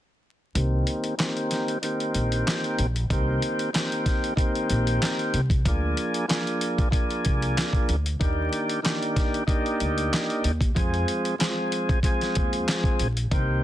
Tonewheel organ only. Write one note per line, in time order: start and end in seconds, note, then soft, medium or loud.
0.55 1.14 D#3 medium
0.55 1.14 A#3 medium
0.55 1.15 C4 medium
0.55 1.15 G4 loud
1.18 1.77 D#3 loud
1.18 1.78 A#3 medium
1.18 1.78 C4 medium
1.18 1.79 G4 loud
1.82 2.86 D#3 medium
1.82 2.86 A#3 medium
1.82 2.86 C4 medium
1.82 2.87 G4 loud
3.10 3.69 D#3 medium
3.10 3.70 A#3 medium
3.10 3.70 C4 medium
3.10 3.71 G4 loud
3.73 4.33 D#3 loud
3.73 4.33 A#3 medium
3.73 4.34 C4 loud
3.73 4.34 G4 loud
4.36 5.40 D#3 loud
4.36 5.41 A#3 medium
4.36 5.41 C4 medium
4.36 5.41 G4 loud
5.66 6.25 F3 loud
5.66 6.25 A#3 medium
5.66 6.26 D4 medium
5.66 6.26 G#4 loud
6.28 6.88 F3 loud
6.28 6.88 A#3 medium
6.28 6.89 D4 medium
6.28 6.89 G#4 loud
6.90 7.95 F3 loud
6.90 7.96 A#3 medium
6.90 7.96 D4 medium
6.90 7.96 G#4 loud
8.19 8.79 D#3 medium
8.19 8.80 A#3 medium
8.19 8.80 D4 medium
8.19 8.81 G4 loud
8.82 9.43 D#3 loud
8.82 9.43 A#3 medium
8.82 9.44 D4 medium
8.82 9.44 G4 loud
9.47 10.51 A#3 medium
9.47 10.52 D4 medium
9.47 10.51 D#4 loud
9.47 10.52 G4 loud
10.75 11.35 F3 medium
10.75 11.35 G#3 medium
10.75 11.35 C4 medium
10.75 11.36 G#4 loud
11.39 11.99 F3 loud
11.39 11.99 G#3 medium
11.39 11.99 C4 medium
11.39 12.00 G#4 loud
12.03 13.07 F3 loud
12.03 13.07 G#3 medium
12.03 13.08 C4 medium
12.03 13.08 G#4 loud
13.31 13.64 D#3 medium
13.31 13.64 A#3 medium
13.31 13.64 C4 medium
13.31 13.64 G4 loud